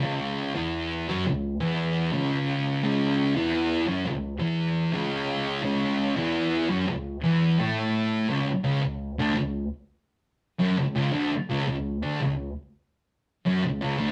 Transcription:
\new Staff \with { instrumentName = "Distorted electric guitar" } { \clef bass \time 4/4 \key d \lydian \tempo 4 = 85 <cis, cis>8. <e, e>8. <fis, fis>16 cis,8 <e, e>8. <cis, cis>4 | <cis, cis>8. <e, e>8. <fis, fis>16 cis,8 <e, e>8. <cis, cis>4 | <cis, cis>8. <e, e>8. <fis, fis>16 cis,8 <e, e>8 <a, a>4 <cis, cis>16 | r16 <cis, cis>16 cis,8 <d, d>16 cis,8 r4 r16 <fis, fis>16 cis,16 <cis, cis>16 <d, d>16 |
r16 <cis, cis>16 cis,8 <d, d>16 cis,8 r4 r16 <fis, fis>16 cis,16 <cis, cis>16 <d, d>16 | }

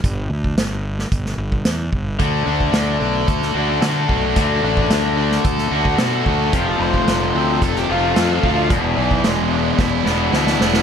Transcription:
<<
  \new Staff \with { instrumentName = "Overdriven electric guitar" } { \time 4/4 \key d \major \tempo 4 = 111 r1 | r1 | r1 | g'16 a'16 c''4. a'16 g'16 f'4. |
r1 | }
  \new Staff \with { instrumentName = "Overdriven electric guitar" } { \time 4/4 \key d \major r1 | d8 d'8 d8 d'8 a'8 fis'8 a'8 fis'8 | d8 d'8 d8 d'8 a'8 fis'8 a'8 fis'8 | f8 d8 d8 c'8 a'8 f'8 a'8 f'8 |
e,8 e8 gis8 d'8 e'8 b8 e'8 b8 | }
  \new Staff \with { instrumentName = "Overdriven electric guitar" } { \time 4/4 \key d \major r1 | <d a d' fis'>2~ <d a d' fis'>8 <d a d' fis'>8 <d a d' fis'>4 | <d a d' fis'>2~ <d a d' fis'>8 <d a d' fis'>8 <d a d' fis'>4 | <f, c f a c' f'>2~ <f, c f a c' f'>8 <f, c f a c' f'>8 <f, c f a c' f'>4 |
<e, b, e gis d' e'>2~ <e, b, e gis d' e'>8 <e, b, e gis d' e'>8 <e, b, e gis d' e'>4 | }
  \new Staff \with { instrumentName = "Fingered electric bass" } { \clef bass \time 4/4 \key d \major g,,8 d,8 g,,4 g,,8 g,,8 e,8 g,,8 | d,8 d,8 d,8 b,,8 d,8 d,8 d8 b,,8 | d,8 a,,8 d,4 d,8 d,8 b,8 d,8 | f,,8 f,,8 f,,8 d,8 f,,8 f,,8 f,8 d,8 |
e,,8 b,,8 e,,4 e,,8 e,,8 d,8 e,,8 | }
  \new DrumStaff \with { instrumentName = "Drums" } \drummode { \time 4/4 <hh bd>8. bd16 <hh sn>8. sn16 <hh bd>16 sn8 bd16 <hh sn>8 bd8 | <hh bd>8. bd16 <hh sn>4 <hh bd>16 sn8. <hh sn>8 bd8 | <hh bd>8. bd16 <hh sn>8. sn16 <hh bd>16 sn8 bd16 <hh sn>8 bd8 | <hh bd>8. bd16 <hh sn>4 <hh bd>16 sn8. <hh sn>8 bd8 |
<hh bd>8. bd16 <hh sn>4 <bd sn>8 sn8 sn16 sn16 sn16 sn16 | }
>>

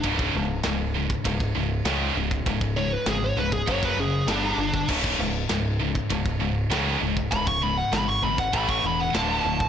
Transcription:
<<
  \new Staff \with { instrumentName = "Lead electric guitar" } { \time 4/4 \key cis \phrygian \tempo 4 = 99 r1 | r8 cis''16 b'16 gis'16 cis''16 b'16 gis'16 cis''16 b'16 gis'8 d'4 | r1 | b''16 cis'''16 b''16 fis''16 b''16 cis'''16 b''16 fis''16 b''16 cis'''16 b''16 fis''16 a''4 | }
  \new Staff \with { instrumentName = "Distorted electric guitar" } { \clef bass \time 4/4 \key cis \phrygian <cis, gis, cis>8 <cis, gis,>8 <cis, gis,>8 <cis, gis,>8 <cis, gis,>8 <cis, gis,>8 <cis, gis, cis>8 <cis, gis,>8 | <cis, gis,>8 <cis, gis,>8 <cis, gis,>8 <cis, gis,>8 <fis, cis fis>8 <fis, cis>8 <g, d g>8 <g, d>8 | <cis, gis, cis>8 <cis, gis,>8 <cis, gis,>8 <cis, gis,>8 <cis, gis,>8 <cis, gis,>8 <cis, gis, cis>8 <cis, gis,>8 | <cis, gis,>8 <cis, gis,>8 <cis, gis,>8 <cis, gis,>8 <a, e a>8 <a, e>8 <d, a, d>8 <d, a,>8 | }
  \new Staff \with { instrumentName = "Distorted electric guitar" } { \clef bass \time 4/4 \key cis \phrygian <cis, gis, cis>8 <cis, gis,>8 <cis, gis,>8 <cis, gis,>8 <cis, gis,>8 <cis, gis,>8 <cis, gis, cis>8 <cis, gis,>8 | <cis, gis,>8 <cis, gis,>8 <cis, gis,>8 <cis, gis,>8 <fis, cis fis>8 <fis, cis>8 <g, d g>8 <g, d>8 | <cis, gis, cis>8 <cis, gis,>8 <cis, gis,>8 <cis, gis,>8 <cis, gis,>8 <cis, gis,>8 <cis, gis, cis>8 <cis, gis,>8 | <cis, gis,>8 <cis, gis,>8 <cis, gis,>8 <cis, gis,>8 <a, e a>8 <a, e>8 <d, a, d>8 <d, a,>8 | }
  \new Staff \with { instrumentName = "Picked electric bass" } { \clef bass \time 4/4 \key cis \phrygian cis,,8 cis,,8 cis,,4 cis,,8 cis,,8 cis,8 cis,,8 | cis,,4 gis,,8 cis,,8 fis,,8 fis,,8 g,,8 g,,8 | cis,,8 cis,,8 cis,,4 cis,,8 cis,,8 cis,8 cis,,8 | cis,,4 gis,,8 gis,,8 a,,8 e,,8 d,,8 d,,8 | }
  \new DrumStaff \with { instrumentName = "Drums" } \drummode { \time 4/4 <bd rb>16 bd8. <rb sn>8. bd16 <bd rb>16 bd8. <rb sn>8. bd16 | <bd rb>16 bd8. <rb sn>8. bd16 <bd rb>16 bd8. <rb sn>8. bd16 | <cymc bd>16 bd8. <rb sn>8. bd16 <bd rb>16 bd8. <rb sn>8. bd16 | <bd rb>16 bd8. <rb sn>8. bd16 <bd rb>16 bd8. <rb sn>8. bd16 | }
>>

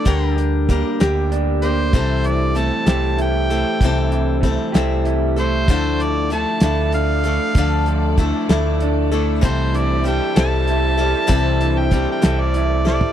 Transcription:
<<
  \new Staff \with { instrumentName = "Harmonica" } { \time 6/8 \key c \mixolydian \tempo 4. = 64 d''8 r2 c''8~ | c''8 d''8 a''4 g''4~ | g''4 r4. c''8~ | c''8 d''8 a''4 f''4~ |
f''4 r2 | c''8 d''8 g''8 a''4.~ | a''8. g''8 g''8 d''8. d''8 | }
  \new Staff \with { instrumentName = "String section" } { \time 6/8 \key c \mixolydian r2. | r2. | r2. | <a' d''>2.~ |
<a' d''>2. | <g' a' c'' e''>2.~ | <g' a' c'' e''>2. | }
  \new Staff \with { instrumentName = "Steel-string acoustic guitar" } { \time 6/8 \key c \mixolydian <d g d' g' bes'>4 <g d' g' bes'>8 <d g d' g' bes'>4 <d' g' bes'>8 | <c e g c' e' a'>4 <g c' e' a'>8 <c e g c' e' a'>4 <g c' e' a'>8 | <c e g c' e' a'>4 <g c' e' a'>8 <c e g c' e' a'>4 <g c' e' a'>8 | <d f a d' e' a'>4 <a d' e' a'>8 <d f a d' a'>4 <a d' a'>8 |
<d f a d' a'>4 <a d' e' a'>8 <d f a d' e' a'>4 <a d' e' a'>8 | <c e g c' e' a'>4 <g c' e' a'>8 <c e g c' e' a'>4 <g c' e' a'>8 | <c e g c' e' a'>4 <g c' e' a'>8 <c e g c' e' a'>4 <g c' e' a'>8 | }
  \new Staff \with { instrumentName = "Clean electric guitar" } { \time 6/8 \key c \mixolydian d8 d8 bes8 g'8 d'8 bes8 | c8 e8 a8 g'8 e'8 a8 | c8 e8 a8 g'8 e'8 a8 | d8 f8 a8 e'8 d'8 a8 |
d8 f8 a8 e'8 d'8 a8 | c8 e8 g8 a'8 e'8 g8 | c8 e8 g8 a'8 e'8 g8 | }
  \new Staff \with { instrumentName = "Fingered electric bass" } { \clef bass \time 6/8 \key c \mixolydian d,4. d,4. | c,4. c,4. | c,4. c,4. | d,4. d,4. |
d,4. d,4. | c,4. c,4. | c,4. c,4. | }
  \new DrumStaff \with { instrumentName = "Drums" } \drummode { \time 6/8 <hh bd>8 hh8 <hh bd>8 <hh sn>8 hh8 hh8 | <hh bd>8 hh8 hh8 <hh sn>8 hh8 hh8 | <hh bd>8 hh8 <hh bd>8 <hh sn>8 hh8 hh8 | <hh bd>8 hh8 hh8 <hh sn>8 hh8 hh8 |
<hh bd>8 hh8 <hh bd>8 <hh sn>8 hh8 hh8 | <hh bd>8 hh8 hh8 <hh sn>8 hh8 hh8 | <hh bd>8 hh8 <hh bd>8 <hh sn>8 hh8 sn16 tomfh16 | }
>>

